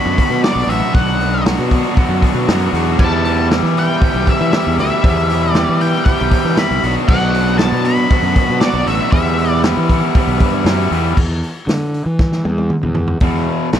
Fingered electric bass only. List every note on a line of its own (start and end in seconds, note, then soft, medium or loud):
0.06 0.17 F#2 medium
0.30 0.42 B2 medium
0.56 0.67 B1 medium
0.67 0.80 A1 medium
0.95 1.55 B1 medium
1.59 1.83 B2 medium
2.09 2.21 F#2 medium
2.34 2.47 B2 loud
2.48 2.71 F#2 medium
2.73 2.96 E2 medium
3.00 3.60 E2 medium
3.63 3.87 E3 medium
4.14 4.26 B1 medium
4.41 4.52 E3 loud
4.67 4.77 E2 medium
4.78 4.90 D2 medium
5.04 5.64 E2 loud
5.69 5.92 E3 medium
6.21 6.32 B1 medium
6.45 6.57 E3 loud
6.71 6.82 C2 medium
6.84 6.95 B1 medium
7.09 7.69 B1 loud
7.72 7.96 B2 medium
8.23 8.35 F#2 medium
8.49 8.61 B2 medium
8.73 8.86 B1 medium
8.87 8.99 A1 medium
9.12 9.73 E2 loud
9.77 10.01 E3 medium
10.27 10.39 B1 medium
10.40 10.63 G2 medium
10.65 10.88 F#2 medium
10.91 11.15 E2 medium
11.17 11.42 E2 medium
11.67 12.04 D3 medium
12.06 12.43 E3 medium
12.45 12.70 E2 medium
12.84 13.20 E2 medium
13.21 13.46 E2 medium
13.74 13.80 B1 medium